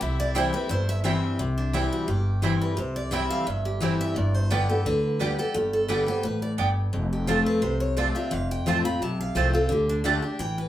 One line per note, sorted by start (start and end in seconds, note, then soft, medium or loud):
0.01 0.49 C2 loud
0.01 0.67 C3 loud
0.01 1.23 E4 medium
0.01 0.19 E5 medium
0.20 0.36 D5 loud
0.35 0.53 E3 medium
0.35 0.53 G3 medium
0.35 0.45 C4 loud
0.35 0.53 C4 loud
0.35 0.45 E4 loud
0.35 0.52 E4 loud
0.35 0.45 C5 medium
0.35 0.53 C5 loud
0.35 0.45 G5 loud
0.53 0.70 C4 medium
0.53 0.69 E4 medium
0.53 0.70 B4 loud
0.69 1.17 G1 medium
0.69 1.36 G2 medium
0.69 0.88 C5 loud
0.89 0.99 E5 loud
1.04 1.37 E3 medium
1.04 1.38 G3 medium
1.04 1.14 C4 loud
1.04 1.38 C4 loud
1.04 1.14 E4 medium
1.04 1.38 E4 loud
1.04 1.14 C5 loud
1.04 1.15 G5 loud
1.39 1.87 C2 medium
1.39 2.05 C3 medium
1.58 1.74 D4 medium
1.73 2.07 E3 medium
1.73 2.07 G3 medium
1.73 1.83 C4 medium
1.73 2.07 C4 medium
1.73 1.84 E4 medium
1.73 1.92 E4 medium
1.73 2.07 E4 medium
1.73 1.84 C5 medium
1.73 1.84 G5 loud
1.93 2.07 F#4 medium
2.08 2.56 G1 medium
2.08 2.74 G2 medium
2.08 2.57 G4 medium
2.42 2.76 E3 medium
2.42 2.76 G3 medium
2.42 2.76 C4 medium
2.42 2.53 C4 medium
2.42 2.76 E4 medium
2.42 2.53 E4 medium
2.42 2.53 C5 medium
2.42 2.53 G5 loud
2.61 2.78 B4 medium
2.77 3.25 C2 medium
2.77 3.43 C3 medium
2.77 2.96 C5 medium
2.96 3.12 D5 loud
3.11 3.45 E3 medium
3.11 3.45 G3 medium
3.11 3.45 C4 loud
3.11 3.22 C4 medium
3.11 3.46 E4 loud
3.11 3.22 E4 medium
3.11 3.22 C5 loud
3.11 3.30 E5 medium
3.11 3.22 G5 loud
3.30 3.47 F5 loud
3.47 3.95 G1 medium
3.47 4.13 G2 medium
3.47 3.65 E5 medium
3.65 3.81 G4 medium
3.81 4.14 E3 medium
3.81 4.15 G3 medium
3.81 3.91 C4 medium
3.81 4.15 C4 medium
3.81 3.91 E4 medium
3.81 4.15 E4 medium
3.81 3.92 C5 medium
3.81 4.00 C5 medium
3.81 3.92 G5 medium
4.01 4.16 E5 loud
4.16 4.64 G1 medium
4.16 4.82 G2 medium
4.16 4.34 D5 medium
4.34 4.51 C5 medium
4.50 4.68 D3 medium
4.50 4.68 G3 medium
4.50 4.60 B3 medium
4.50 4.69 B3 loud
4.50 4.60 G4 medium
4.50 4.68 G4 loud
4.50 4.69 B4 medium
4.50 4.61 D5 loud
4.50 4.61 G5 loud
4.69 4.86 B3 soft
4.69 4.85 G4 medium
4.69 4.85 A4 medium
4.86 5.33 D2 medium
4.86 5.19 D3 medium
4.86 5.35 B4 loud
5.19 5.38 D3 medium
5.19 5.38 G3 medium
5.19 5.29 B3 medium
5.19 5.38 B3 medium
5.19 5.30 G4 medium
5.19 5.37 G4 medium
5.19 5.30 D5 loud
5.19 5.30 G5 loud
5.39 5.55 B3 soft
5.39 5.54 G4 medium
5.39 5.55 A4 medium
5.54 6.02 G1 medium
5.54 6.21 G2 loud
5.54 5.73 G4 medium
5.73 5.89 A4 medium
5.88 6.06 D3 medium
5.88 6.07 G3 medium
5.88 5.98 B3 medium
5.88 6.07 B3 medium
5.88 5.99 G4 medium
5.88 6.05 G4 medium
5.88 6.07 B4 medium
5.88 5.99 D5 medium
5.88 5.99 G5 loud
6.06 6.24 B3 soft
6.06 6.23 G4 medium
6.06 6.24 C5 loud
6.23 6.53 A1 medium
6.23 6.57 A2 medium
6.23 6.42 B4 medium
6.42 6.52 D5 loud
6.58 6.88 G1 medium
6.58 6.92 G2 medium
6.58 6.68 B3 medium
6.58 6.68 G4 medium
6.58 6.68 D5 medium
6.58 6.68 G5 loud
6.93 7.41 F1 medium
6.93 7.59 F2 medium
7.13 7.28 G4 medium
7.27 7.61 F3 medium
7.27 7.61 A3 medium
7.27 7.37 C4 medium
7.27 7.61 C4 medium
7.27 7.38 F4 medium
7.27 7.61 F4 loud
7.27 7.46 A4 medium
7.27 7.38 C5 medium
7.27 7.38 A5 medium
7.46 7.63 B4 loud
7.62 8.10 C2 medium
7.62 8.28 C3 medium
7.62 7.80 C5 medium
7.80 7.97 C#5 loud
7.97 8.14 F3 medium
7.97 8.15 A3 medium
7.97 8.07 C4 medium
7.97 8.15 C4 medium
7.97 8.07 F4 medium
7.97 8.14 F4 medium
7.97 8.07 C5 loud
7.97 8.15 D5 medium
7.97 8.07 A5 medium
8.15 8.32 C4 soft
8.15 8.31 F4 medium
8.15 8.33 E5 medium
8.31 8.56 F1 medium
8.31 8.98 F2 medium
8.31 8.50 F5 medium
8.51 8.67 G5 medium
8.66 8.96 A1 medium
8.66 8.84 F3 medium
8.66 8.84 A3 medium
8.66 8.76 C4 medium
8.66 8.84 C4 medium
8.66 8.76 F4 medium
8.66 8.84 F4 loud
8.66 8.77 C5 loud
8.66 8.77 A5 loud
8.66 8.85 A5 medium
8.85 9.01 C4 soft
8.85 9.01 F4 medium
8.85 9.01 B5 loud
9.01 9.31 B1 medium
9.01 9.68 C3 medium
9.01 9.20 A5 loud
9.21 9.36 F5 loud
9.35 9.65 C2 medium
9.35 9.53 F3 medium
9.35 9.53 A3 medium
9.35 9.45 C4 medium
9.35 9.53 C4 medium
9.35 9.45 F4 medium
9.35 9.52 F4 medium
9.35 9.54 C5 medium
9.35 9.46 C5 medium
9.35 9.46 A5 medium
9.53 9.70 C4 soft
9.53 9.70 F4 medium
9.53 9.70 A4 medium
9.69 10.18 D2 medium
9.69 10.03 D3 medium
9.69 9.89 G4 medium
9.89 9.99 D4 medium
10.04 10.22 D3 loud
10.04 10.14 A3 medium
10.04 10.22 A3 loud
10.04 10.22 D4 loud
10.04 10.15 G4 medium
10.04 10.21 G4 loud
10.04 10.15 D5 loud
10.04 10.15 A5 loud
10.22 10.39 D4 soft
10.22 10.39 G4 medium
10.39 10.68 A1 medium
10.39 10.68 E3 medium
10.39 10.58 G5 loud
10.58 10.68 B4 medium